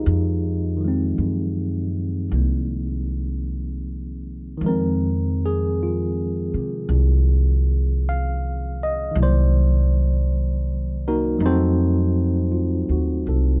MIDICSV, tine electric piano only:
0, 0, Header, 1, 2, 480
1, 0, Start_track
1, 0, Key_signature, -4, "minor"
1, 0, Tempo, 1142857
1, 23, Time_signature, 4, 2, 24, 8
1, 2903, Tempo, 1123596
1, 5760, End_track
2, 0, Start_track
2, 0, Title_t, "Tine electric piano"
2, 0, Program_c, 0, 4
2, 0, Control_c, 0, 64, 127
2, 0, Note_on_c, 0, 63, 51
2, 0, Note_on_c, 0, 65, 50
2, 0, Note_on_c, 0, 67, 44
2, 0, Note_on_c, 0, 68, 40
2, 0, Note_on_c, 0, 70, 39
2, 0, Note_on_c, 0, 72, 38
2, 0, Note_on_c, 0, 77, 84
2, 70, Note_off_c, 0, 63, 0
2, 323, Note_on_c, 0, 51, 44
2, 339, Note_on_c, 0, 53, 39
2, 355, Note_on_c, 0, 56, 39
2, 369, Note_on_c, 0, 60, 53
2, 988, Note_on_c, 0, 58, 45
2, 1442, Note_off_c, 0, 77, 0
2, 1916, Note_off_c, 0, 51, 0
2, 1921, Note_on_c, 0, 51, 54
2, 1932, Note_off_c, 0, 53, 0
2, 1937, Note_on_c, 0, 53, 46
2, 1946, Note_off_c, 0, 56, 0
2, 1950, Note_off_c, 0, 58, 0
2, 1950, Control_c, 0, 64, 0
2, 1951, Note_off_c, 0, 67, 0
2, 1951, Note_on_c, 0, 56, 47
2, 1952, Note_off_c, 0, 68, 0
2, 1952, Note_off_c, 0, 72, 0
2, 1953, Note_off_c, 0, 65, 0
2, 1953, Note_off_c, 0, 70, 0
2, 1955, Note_off_c, 0, 60, 0
2, 1959, Note_on_c, 0, 70, 64
2, 1967, Note_on_c, 0, 60, 58
2, 2029, Control_c, 0, 64, 127
2, 2270, Note_off_c, 0, 70, 0
2, 2291, Note_on_c, 0, 68, 71
2, 2431, Note_off_c, 0, 68, 0
2, 2448, Note_on_c, 0, 65, 48
2, 2754, Note_off_c, 0, 65, 0
2, 3406, Note_on_c, 0, 77, 80
2, 3715, Note_off_c, 0, 77, 0
2, 3724, Note_on_c, 0, 75, 65
2, 3838, Note_off_c, 0, 51, 0
2, 3843, Note_on_c, 0, 51, 44
2, 3861, Note_on_c, 0, 54, 44
2, 3864, Note_off_c, 0, 53, 0
2, 3868, Note_off_c, 0, 75, 0
2, 3871, Note_off_c, 0, 56, 0
2, 3873, Control_c, 0, 64, 0
2, 3878, Note_on_c, 0, 58, 42
2, 3879, Note_off_c, 0, 60, 0
2, 3890, Note_on_c, 0, 74, 51
2, 3892, Note_on_c, 0, 72, 81
2, 3939, Control_c, 0, 64, 127
2, 4081, Note_off_c, 0, 72, 0
2, 4679, Note_off_c, 0, 58, 0
2, 4683, Note_on_c, 0, 63, 51
2, 4683, Note_on_c, 0, 70, 66
2, 4684, Note_on_c, 0, 58, 55
2, 4684, Note_on_c, 0, 66, 57
2, 4808, Note_off_c, 0, 54, 0
2, 4812, Note_off_c, 0, 51, 0
2, 4813, Note_on_c, 0, 54, 47
2, 4817, Note_on_c, 0, 57, 40
2, 4825, Note_off_c, 0, 63, 0
2, 4825, Note_off_c, 0, 70, 0
2, 4825, Note_on_c, 0, 60, 42
2, 4826, Note_off_c, 0, 58, 0
2, 4826, Note_off_c, 0, 66, 0
2, 4829, Control_c, 0, 64, 0
2, 4830, Note_on_c, 0, 63, 52
2, 4835, Note_off_c, 0, 74, 0
2, 4840, Note_off_c, 0, 60, 0
2, 4845, Note_on_c, 0, 66, 68
2, 4845, Note_on_c, 0, 72, 80
2, 4846, Note_on_c, 0, 60, 69
2, 4847, Note_on_c, 0, 69, 70
2, 4893, Control_c, 0, 64, 127
2, 5297, Note_off_c, 0, 66, 0
2, 5297, Note_off_c, 0, 72, 0
2, 5298, Note_off_c, 0, 60, 0
2, 5299, Note_off_c, 0, 69, 0
2, 5299, Note_on_c, 0, 65, 40
2, 5467, Note_on_c, 0, 66, 42
2, 5612, Note_off_c, 0, 65, 0
2, 5627, Note_on_c, 0, 69, 44
2, 5718, Note_off_c, 0, 66, 0
2, 5760, Note_off_c, 0, 54, 0
2, 5760, Note_off_c, 0, 57, 0
2, 5760, Note_off_c, 0, 63, 0
2, 5760, Note_off_c, 0, 69, 0
2, 5760, End_track
0, 0, End_of_file